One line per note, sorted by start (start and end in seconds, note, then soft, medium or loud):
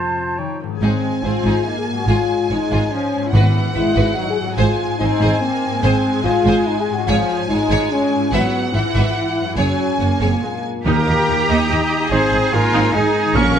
0.00 0.40 F2 medium
0.00 0.40 C3 soft
0.00 0.40 F3 soft
0.00 0.16 C4 soft
0.00 0.40 F4 medium
0.00 0.40 C5 medium
0.00 0.38 A5 soft
0.17 0.40 C4 soft
0.37 0.83 D#3 soft
0.37 0.60 D#4 medium
0.37 0.60 C#5 soft
0.37 0.60 G5 soft
0.60 1.88 G#2 soft
0.60 0.83 C#4 soft
0.60 0.83 A#4 soft
0.68 1.93 G#3 soft
0.72 2.05 D#4 soft
0.77 2.02 G#4 soft
0.81 0.90 G#1 medium
0.81 0.90 G#2 medium
0.81 1.21 G#3 medium
0.81 1.20 C4 medium
0.81 1.01 D#4 medium
0.81 1.01 G#4 medium
0.81 3.29 G#5 medium
1.23 1.31 G#1 soft
1.23 1.32 G#2 soft
1.23 1.65 C4 medium
1.23 1.66 F4 medium
1.23 1.32 G#4 soft
1.23 1.33 C5 soft
1.44 1.52 G#1 medium
1.44 1.52 G#2 medium
1.44 1.64 D#4 soft
1.44 1.64 G#4 medium
1.66 2.07 A#3 soft
1.66 1.80 D#4 medium
1.78 1.85 G#4 medium
1.90 3.15 G#2 soft
1.90 2.07 F#4 medium
1.94 3.28 G#3 soft
1.99 3.30 C#4 soft
2.03 3.33 G#4 soft
2.07 2.15 G#1 medium
2.07 2.15 G#2 medium
2.07 2.49 G#3 soft
2.07 2.49 F4 medium
2.07 2.27 F4 medium
2.07 2.27 G#4 medium
2.50 2.58 G#1 soft
2.50 2.58 G#2 soft
2.50 2.91 G#3 medium
2.50 2.91 D#4 medium
2.50 2.58 G#4 soft
2.50 2.58 C#5 soft
2.71 2.79 G#1 medium
2.71 2.79 G#2 medium
2.71 2.91 F4 medium
2.71 2.90 G#4 medium
2.92 3.32 F3 soft
2.92 3.33 C#4 medium
3.16 4.39 G#2 soft
3.20 4.53 B3 soft
3.25 4.56 E4 soft
3.29 3.41 G#1 medium
3.29 3.41 G#2 medium
3.29 3.74 B3 medium
3.29 4.58 F#4 soft
3.29 4.55 F#5 medium
3.34 3.92 G#2 medium
3.34 3.74 E3 medium
3.34 3.53 F#4 medium
3.34 3.53 B4 medium
3.74 3.84 G#1 soft
3.74 3.84 G#2 soft
3.74 4.16 G#3 medium
3.74 4.15 E4 medium
3.74 3.83 B4 soft
3.74 3.82 E5 soft
3.95 4.05 G#1 medium
3.95 4.04 G#2 medium
3.95 4.15 F#4 medium
3.95 4.15 B4 medium
4.17 4.58 F#3 soft
4.17 4.30 D#4 medium
4.30 4.36 G#4 medium
4.40 5.65 G#2 soft
4.45 5.69 C4 soft
4.45 4.51 F#4 medium
4.49 5.74 D#4 soft
4.54 5.00 G#3 medium
4.54 4.99 F4 medium
4.54 5.78 G#4 soft
4.54 4.77 G#4 medium
4.54 4.77 C5 medium
4.54 7.03 G#5 medium
4.58 4.66 G#1 medium
4.58 4.67 G#2 medium
4.98 5.09 G#1 soft
4.98 5.08 G#2 soft
4.98 5.41 C4 medium
4.98 5.40 D#4 medium
4.98 5.08 C5 soft
4.98 5.08 D#5 soft
5.21 5.30 G#1 medium
5.21 5.29 G#2 medium
5.21 5.40 G#4 medium
5.21 5.40 C5 medium
5.40 5.82 A#3 medium
5.40 5.80 C4 medium
5.66 6.89 G#2 medium
5.70 7.02 C4 soft
5.75 7.05 D#4 soft
5.80 5.91 G#1 medium
5.80 5.91 G#2 medium
5.80 7.07 G#3 medium
5.80 6.22 C4 medium
5.80 7.02 G#4 soft
5.80 6.02 G#4 medium
5.80 6.02 C5 medium
6.24 6.33 G#1 soft
6.24 6.32 G#2 soft
6.24 6.65 F4 medium
6.24 6.33 C5 medium
6.24 6.33 D#5 soft
6.45 6.53 G#1 medium
6.45 6.54 G#2 medium
6.45 6.65 G#4 medium
6.45 6.65 C5 medium
6.66 6.80 D#4 medium
6.80 6.94 G#4 medium
6.90 8.13 G#2 medium
6.90 7.07 F#4 medium
6.94 8.27 C#4 soft
6.99 8.29 F4 soft
7.03 7.48 F3 medium
7.03 7.36 F4 medium
7.03 8.32 G#4 soft
7.07 7.16 G#1 medium
7.07 7.16 G#2 medium
7.07 7.27 G#4 medium
7.07 7.27 C#5 medium
7.07 8.30 G#5 medium
7.49 7.57 G#1 soft
7.49 7.58 G#2 soft
7.49 8.30 G#3 medium
7.49 7.89 D#4 medium
7.49 7.57 C#5 medium
7.49 7.57 F5 soft
7.70 7.78 G#1 medium
7.70 7.79 G#2 medium
7.70 7.89 G#4 medium
7.70 7.89 C#5 medium
7.91 8.32 C#4 medium
8.15 9.50 G#2 medium
8.19 9.52 E4 soft
8.24 9.47 F#4 soft
8.32 8.41 G#1 medium
8.32 8.40 G#2 medium
8.32 8.73 F#3 medium
8.32 8.74 B3 medium
8.32 8.51 B4 medium
8.32 8.51 E5 medium
8.32 9.58 F#5 medium
8.73 8.82 G#1 soft
8.73 8.82 G#2 soft
8.73 9.55 E3 medium
8.73 9.15 E4 medium
8.73 8.82 E5 medium
8.73 8.82 F#5 soft
8.94 9.03 G#1 medium
8.94 9.03 G#2 medium
8.94 9.14 B4 medium
8.94 9.14 E5 medium
9.16 9.29 E4 medium
9.30 9.43 E4 medium
9.39 10.35 F#2 soft
9.43 10.37 C#4 soft
9.43 9.58 E4 medium
9.48 10.40 F#4 soft
9.53 10.36 G#4 soft
9.53 9.76 C#5 medium
9.57 9.65 F#1 medium
9.57 9.66 F#2 medium
9.57 9.98 F#3 medium
9.57 10.20 C#4 medium
9.57 9.76 G#4 medium
9.57 10.63 G#5 medium
9.99 10.07 F#1 soft
9.99 10.07 F#2 soft
9.99 10.41 A#3 medium
9.99 10.08 C#5 soft
9.99 10.07 F#5 soft
10.20 10.29 F#1 medium
10.20 10.29 F#2 medium
10.20 10.78 A#2 soft
10.20 10.30 C4 medium
10.20 10.40 G#4 medium
10.20 10.40 C#5 soft
10.28 10.81 D4 soft
10.33 10.83 F4 soft
10.37 10.85 G#4 soft
10.42 10.64 G#3 soft
10.42 10.84 A#3 medium
10.85 10.94 D#2 medium
10.85 11.45 D#3 medium
10.85 12.13 D#3 medium
10.85 11.45 A#3 medium
10.85 11.05 A#3 soft
10.85 11.05 D#4 medium
10.85 11.65 D#4 soft
10.85 12.07 G4 medium
10.85 11.45 A#4 medium
10.85 11.66 G5 medium
10.85 12.07 A#5 medium
10.96 11.68 D#4 soft
11.07 11.15 D#2 soft
11.07 11.15 D#4 soft
11.07 11.26 G4 soft
11.16 11.47 D#5 soft
11.27 11.36 D#2 soft
11.27 11.36 D#4 soft
11.27 11.58 G4 soft
11.27 11.37 G4 soft
11.38 12.12 G5 soft
11.48 11.56 D#2 medium
11.48 11.68 A#3 medium
11.48 11.69 D#4 medium
11.48 12.52 D#5 soft
11.48 11.68 D#5 medium
11.48 11.58 D#5 medium
11.59 12.13 G4 soft
11.69 11.78 D#2 soft
11.69 12.10 D#4 medium
11.69 11.89 D#4 soft
11.69 11.78 D#4 soft
11.69 11.84 D#4 medium
11.69 11.75 D#5 medium
11.69 11.83 D#5 medium
11.69 12.13 G5 medium
11.79 11.99 A#3 soft
11.84 11.98 D#4 medium
11.84 11.95 D#5 medium
11.84 11.97 D#5 medium
11.90 13.04 D#4 soft
11.97 12.12 A#3 soft
11.97 12.12 D#4 medium
11.97 12.10 D#5 medium
11.97 12.11 D#5 medium
12.11 12.19 G#1 medium
12.11 13.37 G#2 medium
12.11 12.31 C4 medium
12.11 12.53 C4 medium
12.11 12.30 D#4 medium
12.11 12.92 D#4 medium
12.11 12.52 G#4 medium
12.11 12.52 C5 medium
12.11 12.53 C5 medium
12.11 12.94 G#5 medium
12.11 13.33 G#5 medium
12.21 13.14 C4 soft
12.32 12.40 G#1 soft
12.32 12.40 D#4 soft
12.32 12.93 G#4 soft
12.43 12.83 C5 soft
12.53 12.61 G#1 soft
12.53 12.93 A#3 medium
12.53 12.62 D#4 medium
12.53 12.94 F4 medium
12.53 12.61 G#4 medium
12.53 12.93 A#4 medium
12.53 12.94 A#4 medium
12.53 12.72 D#5 soft
12.63 13.37 G#5 medium
12.73 12.81 G#1 medium
12.73 12.93 C4 medium
12.73 12.93 D#4 medium
12.93 13.01 G#1 medium
12.93 13.35 G#3 medium
12.93 13.02 D#4 soft
12.93 13.35 D#4 medium
12.93 13.38 D#4 medium
12.93 13.34 G#4 medium
12.93 13.37 G#4 medium
12.93 13.35 G#4 medium
12.93 13.35 G#5 medium
13.05 13.37 D#4 medium
13.15 13.37 C4 medium
13.25 13.37 D#3 soft
13.35 13.43 A#1 medium
13.35 13.59 A#2 medium
13.35 13.59 A#3 medium
13.35 13.54 A#3 medium
13.35 13.54 C#4 medium
13.35 13.59 C#4 medium
13.35 13.59 A#4 medium
13.35 13.59 F5 medium
13.35 13.59 C#6 medium
13.46 13.59 C#4 soft
13.55 13.59 A#1 medium
13.55 13.59 C#4 medium
13.55 13.59 F4 medium